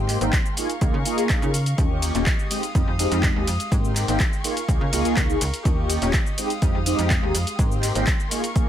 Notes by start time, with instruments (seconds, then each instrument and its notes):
Already playing: fm bass G#2, string section G#3 G5 C6, analog polysynth A#3 C4 D#4 G4
0.09 clap, open hi-hat, shaker
0.21 fm bass G#1, analog polysynth A#3 C4 D#4 G4, closed hi-hat, shaker
0.33 kick, clap, closed hi-hat, shaker
0.46 shaker
0.57 analog polysynth A#3 D#4 F4 G#4, string section A#4 F5 C#6, open hi-hat, shaker
0.70 closed hi-hat, shaker
0.81 fm bass C#2, analog polysynth A#3 D#4 F4 G#4, kick, closed hi-hat, shaker
0.94 fm bass C#3
1.05 analog polysynth A#3 D#4 F4 G#4, open hi-hat, shaker
1.18 closed hi-hat, shaker
1.29 kick, clap, closed hi-hat, shaker
1.42 fm bass C#3, analog polysynth A#3 D#4 F4 G#4, shaker
1.54 open hi-hat, shaker
1.66 closed hi-hat, shaker
1.78 fm bass D#2, analog polysynth A#3 C#4 F4 G4, string section G4 D#5, kick, closed hi-hat, shaker
2.02 open hi-hat, ride, shaker
2.15 fm bass D#1, analog polysynth A#3 C#4 F4 G4, closed hi-hat, shaker
2.26 kick, clap, closed hi-hat, shaker
2.39 shaker
2.50 analog polysynth G#3 C4 D#4 G4, string section G#3 F5 D#6, open hi-hat, ride, shaker
2.63 closed hi-hat, shaker
2.75 fm bass F2, analog polysynth G#3 C4 D#4 G4, kick, closed hi-hat, shaker
2.87 fm bass F2
2.99 analog polysynth G#3 C4 D#4 G4, open hi-hat, ride, shaker
3.12 fm bass F2, closed hi-hat, shaker
3.23 kick, clap, closed hi-hat, shaker
3.36 fm bass D#2, analog polysynth G#3 C4 D#4 G4
3.47 fm bass F2, open hi-hat, ride, shaker
3.60 closed hi-hat, shaker
3.72 fm bass G#2, string section G#3 G5 C6, analog polysynth A#3 C4 D#4 G4, kick, closed hi-hat, shaker
3.85 shaker
3.96 clap, open hi-hat, ride, shaker
4.08 fm bass G#1, analog polysynth A#3 C4 D#4 G4, closed hi-hat, shaker
4.20 kick, clap, closed hi-hat, shaker
4.33 shaker
4.44 analog polysynth A#3 D#4 F4 G#4, string section A#4 F5 C#6, open hi-hat, ride, shaker
4.57 closed hi-hat, shaker
4.68 fm bass C#2, analog polysynth A#3 D#4 F4 G#4, kick, closed hi-hat, shaker
4.81 fm bass C#3
4.93 fm bass C#2, analog polysynth A#3 D#4 F4 G#4, open hi-hat, ride, shaker
5.05 closed hi-hat, shaker
5.17 fm bass C#2, kick, clap, closed hi-hat, shaker
5.29 analog polysynth A#3 D#4 F4 G#4, shaker
5.41 fm bass C#2, open hi-hat, ride, shaker
5.54 closed hi-hat, shaker
5.65 fm bass D#2, analog polysynth A#3 C#4 F4 G4, string section G4 D#5 C#6, kick, closed hi-hat, shaker
5.90 open hi-hat, ride, shaker
6.02 fm bass D#1, analog polysynth A#3 C#4 F4 G4, closed hi-hat, shaker
6.13 kick, clap, closed hi-hat, shaker
6.26 shaker
6.38 analog polysynth G#3 C4 D#4 G4, string section G#3 F5 D#6, open hi-hat, ride, shaker
6.50 closed hi-hat, shaker
6.62 fm bass F2, analog polysynth G#3 C4 D#4 G4, kick, closed hi-hat, shaker
6.75 fm bass F2
6.86 analog polysynth G#3 C4 D#4 G4, open hi-hat, ride, shaker
6.99 fm bass F2, closed hi-hat, shaker
7.10 kick, clap, closed hi-hat, shaker
7.22 fm bass D#2, analog polysynth G#3 C4 D#4 G4
7.35 fm bass F2, open hi-hat, ride, shaker
7.47 closed hi-hat, shaker
7.58 fm bass G#2, analog polysynth A#3 C4 D#4 G4, string section G5 C6, kick, closed hi-hat, shaker
7.72 shaker
7.83 clap, open hi-hat, ride, shaker
7.95 fm bass G#1, analog polysynth A#3 C4 D#4 G4, closed hi-hat, shaker
8.07 kick, clap, closed hi-hat, shaker
8.20 shaker
8.31 analog polysynth A#3 D#4 F4 G#4, string section A#4 F5 C#6, open hi-hat, ride, shaker
8.44 closed hi-hat, shaker
8.55 analog polysynth A#3 D#4 F4 G#4, kick, closed hi-hat, shaker